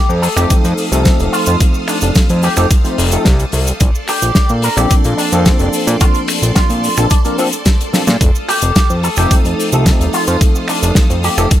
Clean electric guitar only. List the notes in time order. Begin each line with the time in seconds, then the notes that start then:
0.22 A4
0.36 G4
1.32 F4
1.47 F4
1.88 D4
2.02 D4
2.43 G4
2.58 G4
4.09 G4
4.64 A#4
4.77 G4
5.17 D4
6.01 F4
6.55 F4
7.10 D4
7.25 D4
8.49 G4
9.04 A4
9.18 G4
10.14 F4
10.28 F4
10.69 D4
10.83 D4
11.24 G4
11.39 G4